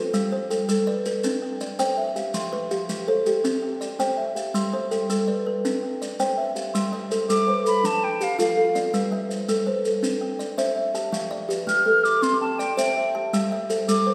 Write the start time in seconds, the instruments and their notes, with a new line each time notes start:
Already playing: kalimba C4 A4 B4 C5
0.14 kalimba G3 F5, maracas
0.32 kalimba G3 C5
0.50 kalimba A4 G5, maracas
0.69 kalimba G3 A4, maracas
0.87 kalimba B4 D5
1.05 kalimba A4 B4, maracas
1.24 kalimba C4 D4, maracas
1.42 kalimba G5
1.61 kalimba D5, maracas
1.79 kalimba C4 C5 G5, maracas
1.97 kalimba E5
2.16 kalimba G4 F5, maracas
2.34 kalimba F3 C6, maracas
2.52 kalimba F3 B4
2.71 kalimba G4 F5, maracas
2.89 kalimba F3 G4, maracas
3.07 kalimba A4 C5
3.25 kalimba G4 A4, maracas
3.44 kalimba C4, maracas
3.62 kalimba G5
3.81 kalimba D5, maracas
3.99 kalimba C4 C5 G5, maracas
4.17 kalimba E5
4.36 kalimba G4 F5, maracas
4.54 kalimba G3 C6, maracas
4.73 kalimba G3 C5
4.91 kalimba A4 G5, maracas
5.09 kalimba G3 A4, maracas
5.28 kalimba B4 D5
5.46 kalimba A4 B4
5.65 kalimba C4 D4, maracas
5.83 kalimba G5
6.02 kalimba D5, maracas
6.19 kalimba C4 C5 G5, maracas
6.37 kalimba E5
6.56 kalimba G4 F5, maracas
6.74 kalimba G3 C6, maracas
6.92 kalimba G3 E5
7.10 kalimba A4 C5, maracas
7.29 kalimba G3 A4, flute D6, maracas
7.47 kalimba B4 C5
7.65 kalimba A4, flute B5, maracas
7.83 kalimba F3 D4, flute A5, maracas
8.04 flute G5
8.21 kalimba G4, flute F5, maracas
8.39 kalimba F3 F4 A4, flute F5, maracas
8.57 kalimba A4
8.75 kalimba C4 D5, maracas
8.93 kalimba G3 B4, maracas
9.11 kalimba G3 E5
9.30 kalimba C5, maracas
9.48 kalimba G3 A4, maracas
9.66 kalimba B4 C5
9.85 kalimba A4, maracas
10.03 kalimba C4 D4, maracas
10.21 kalimba G5
10.39 kalimba D5, maracas
10.58 kalimba C4 C5 E5, maracas
10.76 kalimba E5
10.94 kalimba G4 A5, maracas
11.13 kalimba F3 F5, maracas
11.31 kalimba F3 D5
11.49 kalimba G4 B4, maracas
11.67 kalimba F3 G4, flute F6, maracas
11.86 kalimba A4 B4
12.04 kalimba G4, flute D6, maracas
12.22 kalimba C4, flute C6, maracas
12.41 kalimba G5, flute A5
12.59 kalimba D5, flute G5, maracas
12.77 kalimba C4 C5 E5, flute G5, maracas
12.97 kalimba E5
13.15 kalimba G4 A5
13.33 kalimba G3 F5, maracas
13.52 kalimba G3 E5
13.70 kalimba A4 C5, maracas
13.88 kalimba G3 A4, flute D6, maracas
14.07 kalimba B4 C5